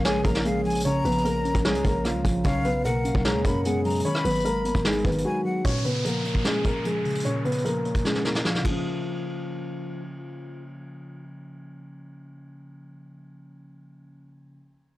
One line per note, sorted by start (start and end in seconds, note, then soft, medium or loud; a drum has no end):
0.00 0.24 A#1 loud
0.00 0.25 C#3 medium
0.00 0.45 F3 medium
0.00 0.44 A#3 medium
0.00 0.85 C#4 medium
0.05 0.24 G#3 medium
0.05 0.23 G#4 loud
0.05 1.05 C#5 loud
0.05 0.24 G#5 medium
0.05 snare loud
0.25 1.02 A#1 loud
0.25 0.44 A#3 medium
0.25 0.43 A#4 medium
0.25 0.44 A#5 medium
0.25 kick loud
0.25 closed hi-hat medium
0.35 snare medium
0.45 0.83 G#3 medium
0.45 1.23 A#3 loud
0.45 0.82 G#4 medium
0.45 0.64 F5 medium
0.45 closed hi-hat medium
0.65 1.04 F3 medium
0.65 0.84 G#5 medium
0.65 closed hi-hat medium
0.70 closed hi-hat medium
0.75 closed hi-hat medium
0.80 closed hi-hat medium
0.85 1.85 C#3 loud
0.85 1.04 C#4 medium
0.85 1.03 C#5 loud
0.85 1.61 A#5 loud
0.85 closed hi-hat medium
1.05 1.53 A#1 loud
1.05 2.05 F3 medium
1.05 1.24 B3 medium
1.05 1.23 B4 medium
1.05 closed hi-hat medium
1.11 closed hi-hat medium
1.18 closed hi-hat medium
1.25 2.04 A#3 medium
1.25 1.63 A#3 medium
1.25 1.62 A#4 medium
1.25 closed hi-hat medium
1.45 2.45 C#4 medium
1.45 closed hi-hat soft
1.55 1.76 A#1 loud
1.55 kick loud
1.55 closed hi-hat medium
1.65 1.84 G#3 medium
1.65 1.83 G#4 loud
1.65 2.45 C#5 loud
1.65 snare loud
1.75 1.84 C#2 loud
1.75 closed hi-hat medium
1.85 2.16 A#1 loud
1.85 2.04 A#3 medium
1.85 2.03 A#4 medium
1.85 kick loud
1.85 closed hi-hat medium
2.05 2.43 F3 medium
2.05 2.45 A#3 medium
2.05 2.42 F4 medium
2.05 cross-stick medium
2.05 closed hi-hat medium
2.15 2.24 C#2 loud
2.25 2.44 A#1 loud
2.25 2.45 F3 medium
2.25 kick loud
2.25 closed hi-hat medium
2.45 3.12 B1 loud
2.45 3.45 C#3 loud
2.45 2.64 C#4 medium
2.45 2.63 C#5 loud
2.45 2.82 F5 loud
2.45 kick loud
2.45 closed hi-hat medium
2.65 3.65 F#3 medium
2.65 2.84 B3 medium
2.65 2.83 B4 medium
2.65 closed hi-hat medium
2.85 3.85 B2 medium
2.85 3.23 A#3 medium
2.85 3.22 A#4 medium
2.85 3.22 F#5 medium
2.85 closed hi-hat medium
3.04 4.05 C#4 medium
3.04 closed hi-hat medium
3.15 3.36 B1 loud
3.15 kick medium
3.25 3.44 G#3 medium
3.25 3.43 G#4 medium
3.25 4.05 C#5 loud
3.25 3.44 A#5 medium
3.25 snare loud
3.35 3.44 D#2 loud
3.45 4.02 F#2 loud
3.45 3.64 A#3 medium
3.45 3.63 A#4 medium
3.45 3.64 B5 medium
3.45 kick loud
3.45 closed hi-hat medium
3.64 4.03 G#3 medium
3.64 4.05 B3 loud
3.64 4.02 G#4 medium
3.64 3.84 F#5 medium
3.64 closed hi-hat medium
3.85 4.05 F#3 medium
3.85 4.04 A#5 medium
3.85 closed hi-hat medium
3.90 closed hi-hat medium
3.95 closed hi-hat medium
4.00 closed hi-hat medium
4.05 5.05 D#3 medium
4.05 4.24 C#4 medium
4.05 4.23 C#5 loud
4.05 4.81 B5 loud
4.05 closed hi-hat medium
4.15 cross-stick loud
4.25 4.73 G#1 loud
4.25 5.25 F#3 medium
4.25 4.44 B3 medium
4.25 4.43 B4 loud
4.25 closed hi-hat medium
4.30 closed hi-hat medium
4.35 closed hi-hat medium
4.40 closed hi-hat medium
4.45 5.24 G#3 medium
4.45 4.83 A#3 medium
4.45 4.82 A#4 medium
4.45 closed hi-hat medium
4.65 5.65 B3 medium
4.65 closed hi-hat medium
4.75 5.04 G#1 loud
4.75 kick medium
4.75 closed hi-hat medium
4.85 5.04 G#3 medium
4.85 5.65 D#4 loud
4.85 5.03 G#4 medium
4.85 snare loud
4.91 closed hi-hat medium
4.98 closed hi-hat soft
5.05 5.25 G#1 loud
5.05 5.24 B3 medium
5.05 5.23 B4 medium
5.05 kick loud
5.05 closed hi-hat soft
5.12 closed hi-hat medium
5.18 closed hi-hat medium
5.25 5.63 F#3 medium
5.25 5.65 G#3 medium
5.25 5.62 F#4 medium
5.25 5.44 G#5 medium
5.45 5.65 F#3 medium
5.45 5.64 F#5 medium
5.65 6.65 A#2 medium
5.65 5.84 C#4 medium
5.65 5.83 C#5 loud
5.65 kick loud
5.65 closed hi-hat medium
5.65 downlifter medium
5.85 6.85 C#3 medium
5.85 6.04 B3 medium
5.85 6.03 B4 medium
5.85 closed hi-hat medium
6.05 6.84 F3 medium
6.05 6.43 A#3 medium
6.05 6.42 A#4 medium
6.05 closed hi-hat medium
6.25 7.25 A#3 medium
6.25 closed hi-hat medium
6.35 kick medium
6.45 6.64 G#3 medium
6.45 7.45 C#4 medium
6.45 6.63 G#4 loud
6.45 snare loud
6.65 6.84 A#3 medium
6.65 6.83 A#4 medium
6.65 kick loud
6.65 closed hi-hat medium
6.85 7.64 F3 medium
6.85 7.23 G#3 medium
6.85 7.22 G#4 medium
6.85 closed hi-hat medium
7.05 7.43 C#3 medium
7.05 closed hi-hat soft
7.10 closed hi-hat medium
7.15 closed hi-hat medium
7.20 closed hi-hat medium
7.25 8.25 A#2 medium
7.25 7.44 C#4 medium
7.25 7.43 C#5 loud
7.25 closed hi-hat medium
7.45 8.45 C#3 medium
7.45 7.64 B3 medium
7.45 7.63 B4 medium
7.45 closed hi-hat medium
7.52 closed hi-hat medium
7.58 closed hi-hat medium
7.65 8.44 F3 medium
7.65 8.03 A#3 medium
7.65 8.02 A#4 medium
7.65 closed hi-hat medium
7.85 8.65 A#3 medium
7.85 closed hi-hat soft
7.95 kick medium
7.95 closed hi-hat medium
8.05 8.24 G#3 medium
8.05 8.65 C#4 loud
8.05 8.23 G#4 medium
8.05 snare medium
8.15 snare medium
8.25 8.44 A#3 medium
8.25 8.43 A#4 medium
8.25 snare medium
8.35 snare medium
8.45 8.62 F3 medium
8.45 8.63 F3 medium
8.45 8.64 F4 medium
8.45 snare medium
8.55 snare medium
8.59 13.39 C#3 medium
8.63 13.43 F3 medium
8.63 10.01 F3 medium
8.63 13.47 A#3 medium
8.63 kick loud
8.63 ride medium
8.71 13.51 C#4 medium